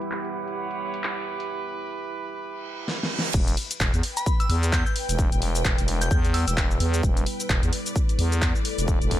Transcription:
Already playing: ambient pad G3 B3 E4 B4, string section E4 G4 B4 F#5, horn section E4 G4 B4
0.02 closed hi-hat
0.11 clap
0.25 closed hi-hat
0.41 string section C#5
0.48 closed hi-hat
0.71 closed hi-hat
0.94 closed hi-hat
1.04 clap
1.40 closed hi-hat
2.42 reverse cymbal
2.88 snare
3.03 snare
3.19 snare
3.34 fm bass E1, ambient pad G3 B3 E4 B4, kick, crash, shaker
3.48 closed hi-hat, shaker
3.57 open hi-hat
3.66 string section B4
3.71 closed hi-hat, shaker
3.80 fm bass E1, kick, clap, shaker
3.94 fm bass E2, closed hi-hat, shaker
4.00 string section G5, open hi-hat
4.17 synth bell B5, closed hi-hat, shaker
4.26 kick, shaker
4.40 synth bell E6, closed hi-hat, shaker
4.49 fm bass E2, synth bell E6, open hi-hat
4.63 closed hi-hat, shaker
4.72 synth bell G6, kick, clap, shaker
4.86 synth bell G6, shaker
4.96 open hi-hat
5.09 fm bass E1, closed hi-hat, shaker
5.19 kick, shaker
5.32 fm bass E1, closed hi-hat, shaker
5.42 open hi-hat
5.55 closed hi-hat, shaker
5.65 fm bass E1, kick, clap, shaker
5.78 fm bass E1, closed hi-hat, shaker
5.88 open hi-hat
6.01 synth bell G6, closed hi-hat, shaker
6.11 fm bass E2, synth bell G6, kick, shaker
6.25 closed hi-hat, shaker
6.34 synth bell E6, open hi-hat
6.48 fm bass E1, synth bell E6, closed hi-hat, shaker
6.57 kick, clap, shaker
6.71 shaker
6.80 fm bass E2, open hi-hat
6.94 closed hi-hat, shaker
7.03 fm bass E1, ambient pad A4, kick, shaker
7.17 closed hi-hat, shaker
7.26 open hi-hat
7.40 closed hi-hat, shaker
7.49 fm bass E1, kick, clap, shaker
7.63 fm bass E2, closed hi-hat, shaker
7.70 string section D5, open hi-hat
7.86 closed hi-hat, shaker
7.96 kick, shaker
8.09 closed hi-hat, shaker
8.19 fm bass E2, open hi-hat
8.32 closed hi-hat, shaker
8.42 kick, clap, shaker
8.56 shaker
8.65 open hi-hat
8.78 fm bass E1, closed hi-hat, shaker
8.88 kick, shaker
9.02 fm bass E1, closed hi-hat, shaker
9.11 kick, open hi-hat

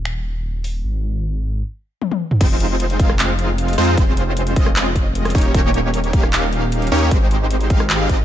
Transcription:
Already playing: detuned saw bass D#1
0.05 finger snap
0.64 open hi-hat
0.84 detuned saw bass G#1
2.02 high tom
2.11 high tom
2.31 mid tom
2.41 detuned saw bass F1, supersaw synth G#3 C4 D#4 F4 C5, kick, closed hi-hat, crash, ride
2.60 closed hi-hat
2.80 closed hi-hat
2.90 closed hi-hat
2.99 detuned saw bass F1, supersaw synth G#3 C4 D#4 F4 F5, kick, closed hi-hat
3.09 cross-stick
3.19 clap, closed hi-hat, ride
3.39 closed hi-hat
3.58 closed hi-hat
3.68 closed hi-hat
3.73 closed hi-hat
3.78 detuned saw bass F2, supersaw synth G#3 C4 D#4 F4 C5, closed hi-hat, open hi-hat
3.84 closed hi-hat
3.97 detuned saw bass F1, supersaw synth G#3 C4 C#4 F4 C5, kick, closed hi-hat, ride
4.17 closed hi-hat
4.37 closed hi-hat
4.47 closed hi-hat
4.56 detuned saw bass F1, supersaw synth G#3 C4 C#4 F4 D#5, kick, closed hi-hat
4.66 cross-stick
4.76 clap, closed hi-hat, ride
4.96 kick, closed hi-hat
5.15 closed hi-hat
5.25 cross-stick, closed hi-hat
5.30 closed hi-hat
5.35 detuned saw bass D#1, supersaw synth A#3 C#4 D#4 G4 C#5, kick, closed hi-hat, open hi-hat
5.41 closed hi-hat
5.54 detuned saw bass D#1, supersaw synth A#3 C#4 D#4 G4 C#5, kick, closed hi-hat, ride
5.74 closed hi-hat
5.94 closed hi-hat
6.04 closed hi-hat
6.13 detuned saw bass D#1, supersaw synth A#3 C#4 D#4 G4 F5, kick, closed hi-hat
6.23 cross-stick
6.33 clap, closed hi-hat, ride
6.53 closed hi-hat
6.72 closed hi-hat
6.82 closed hi-hat
6.87 closed hi-hat
6.92 detuned saw bass D#2, supersaw synth A#3 C#4 D#4 G4 C#5, closed hi-hat, open hi-hat
6.98 closed hi-hat
7.11 detuned saw bass G#1, supersaw synth G#3 C4 D#4 G4 C5, kick, closed hi-hat, ride
7.31 closed hi-hat
7.51 closed hi-hat
7.61 closed hi-hat
7.70 detuned saw bass G#1, supersaw synth G#3 C4 D#4 G4 F5, kick, closed hi-hat
7.80 cross-stick
7.90 clap, closed hi-hat, ride
8.09 detuned saw bass G#1, supersaw synth G#3 C4 D#4 G4 D#5, kick, closed hi-hat

